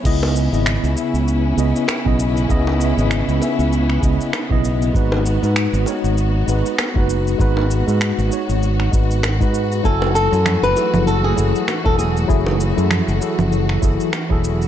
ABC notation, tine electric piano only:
X:1
M:4/4
L:1/16
Q:"Swing 16ths" 1/4=98
K:C#m
V:1 name="Tine electric piano"
[C,B,Ed]3 [C,B,Ed]3 [C,B,Ee]4 [C,B,Ed]2 z [C,B,Ed]3 | [C,B,Ed]3 [C,B,Ed]3 [C,B,Ee]4 [C,B,Ed]2 z [C,B,Ed]3 | [G,DFB]3 [G,DFB]3 [G,DFc]4 [G,DFB]2 z [G,DFB]3 | [G,DFB]3 [G,DFB]3 [G,DFc]4 [G,DFB]2 z [G,DFB]3 |
[F,EAg]3 [F,EAg]3 [F,EGA]4 [F,EGA]2 z [F,EGA]3 | [F,A,EG]3 [F,EGA]3 [F,EGA]4 [F,EGA]2 z [F,EGA]3 |]